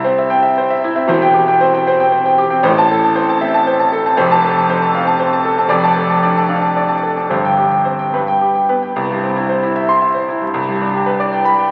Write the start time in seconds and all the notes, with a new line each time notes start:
Already playing: C2 E4 C5 E5
0.04 C4 C5
0.18 E5
0.30 C4 G5
0.43 E5
0.58 C5
0.70 E5
0.84 E4
0.95 C4 E5
1.08 E1 E2 C5
1.22 G5
1.34 G4
1.48 G5
1.61 C4 C5
1.74 G5
1.87 C4 C5
2.00 G5
2.12 C5
2.26 G5
2.38 G4
2.50 C4 G5
2.63 A1 A2 C5
2.78 A5
2.91 A4
3.04 A5
3.15 C4 C5
3.29 A5
3.41 C4 E5
3.54 A5
3.67 C5
3.79 A5
3.92 A4
4.06 C4 A5
4.17 F1 F2 C5
4.31 A5
4.45 A4
4.57 A5
4.70 C4 C5
4.82 A5
4.95 C4 F5
5.07 A5
5.19 C5
5.33 A5
5.45 A4
5.58 C4 A5
5.69 F1 F2 D5
5.84 A5
5.96 A4
6.10 A5
6.23 D4 D5
6.37 A5
6.49 D4 F5
6.61 A5
6.77 D5
6.88 A5
7.03 A4
7.16 D4 A5
7.30 G1 G2 C5
7.45 G5
7.58 G4
7.72 G5
7.85 C4 C5
7.99 G5
8.14 G2 B4
8.28 G5
8.41 G4
8.55 G5
8.69 B3 B4
8.83 G5
8.96 C2
9.10 G2
9.24 C4
9.36 E4
9.49 C5
9.63 E4
9.76 E5
9.89 C6
10.02 E5
10.14 C5
10.29 E4
10.42 G2
10.54 C2
10.69 G2
10.81 D4
10.93 G4
11.06 B4
11.20 D5
11.33 G5
11.45 B5
11.59 G5